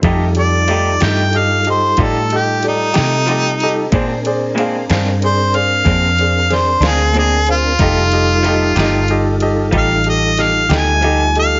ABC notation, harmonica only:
X:1
M:12/8
L:1/8
Q:3/8=62
K:Fmix
V:1 name="Harmonica"
z d2 g f c A G E4 | z4 c f3 c _A A F- | F4- F z f e f _a2 f |]